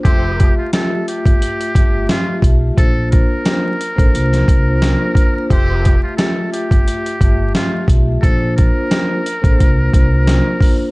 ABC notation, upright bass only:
X:1
M:4/4
L:1/16
Q:"Swing 16ths" 1/4=88
K:F
V:1 name="Upright bass" clef=bass
F,,,3 z4 G,,, z2 G,,,2 z2 =B,,,2 | B,,,3 z4 A,,, C,,2 C,,3 z3 | F,,,3 z4 G,,, z2 G,,,2 z2 =B,,,2 | B,,,3 z4 A,,, C,,2 C,,3 z3 |]